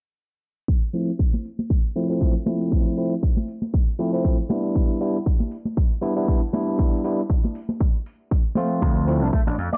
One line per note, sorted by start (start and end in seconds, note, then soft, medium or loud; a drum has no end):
0.68 kick loud
0.93 1.10 F3 medium
0.93 1.10 A3 medium
0.93 1.10 C4 medium
0.93 1.10 E4 medium
0.93 open hi-hat medium
1.19 kick loud
1.34 high conga medium
1.45 open hi-hat medium
1.59 high conga medium
1.70 kick loud
1.95 2.06 F3 medium
1.95 2.07 A3 medium
1.95 2.07 C4 medium
1.95 2.07 E4 loud
1.95 open hi-hat medium
2.10 2.33 F3 medium
2.10 2.33 A3 medium
2.10 2.33 C4 medium
2.10 2.33 E4 medium
2.21 kick medium
2.46 2.94 F3 medium
2.46 2.95 A3 medium
2.46 2.95 C4 medium
2.46 2.95 E4 medium
2.46 open hi-hat medium
2.46 high conga medium
2.72 kick loud
2.97 3.13 F3 medium
2.97 3.13 A3 medium
2.97 3.13 C4 medium
2.97 3.14 E4 medium
2.97 open hi-hat medium
3.23 kick loud
3.37 high conga medium
3.48 open hi-hat loud
3.62 high conga medium
3.74 kick loud
3.99 4.10 F3 medium
3.99 4.10 A3 medium
3.99 4.10 C4 medium
3.99 4.10 E4 medium
3.99 open hi-hat medium
4.13 4.36 F3 medium
4.13 4.37 A3 medium
4.13 4.37 C4 medium
4.13 4.37 E4 medium
4.25 kick loud
4.25 open hi-hat medium
4.49 4.98 G3 medium
4.49 4.98 B3 medium
4.49 4.98 D4 medium
4.49 4.98 E4 medium
4.49 open hi-hat loud
4.49 high conga medium
4.75 kick loud
5.00 5.17 G3 medium
5.00 5.17 B3 medium
5.00 5.17 D4 medium
5.00 5.17 E4 medium
5.00 open hi-hat loud
5.26 kick loud
5.40 high conga medium
5.52 open hi-hat loud
5.65 high conga medium
5.77 kick loud
6.02 6.13 G3 medium
6.02 6.13 B3 medium
6.02 6.13 D4 medium
6.02 6.13 E4 medium
6.02 open hi-hat medium
6.16 6.40 G3 medium
6.16 6.40 B3 medium
6.16 6.40 D4 medium
6.16 6.40 E4 medium
6.28 kick loud
6.53 7.01 G3 medium
6.53 7.01 B3 medium
6.53 7.02 D4 medium
6.53 7.02 E4 medium
6.53 open hi-hat loud
6.53 high conga medium
6.79 kick loud
7.04 7.20 G3 medium
7.04 7.20 B3 medium
7.04 7.20 D4 medium
7.04 7.21 E4 medium
7.04 open hi-hat medium
7.30 kick loud
7.44 high conga medium
7.55 open hi-hat loud
7.69 high conga medium
7.80 kick loud
8.06 open hi-hat medium
8.31 kick loud
8.31 open hi-hat medium
8.55 9.05 F3 medium
8.55 9.05 A3 medium
8.55 9.05 C4 medium
8.55 9.05 F4 medium
8.55 open hi-hat medium
8.55 high conga medium
8.82 9.22 D2 medium
8.82 kick loud
9.07 9.23 F3 medium
9.07 9.23 A3 medium
9.07 9.23 C4 medium
9.07 9.24 E4 medium
9.07 open hi-hat medium
9.22 9.30 C2 medium
9.22 9.28 D4 medium
9.33 9.40 A3 medium
9.33 kick loud
9.47 9.55 A1 medium
9.47 9.56 D4 medium
9.47 high conga medium
9.58 9.68 F2 medium
9.58 open hi-hat loud
9.73 9.78 D5 medium
9.73 high conga medium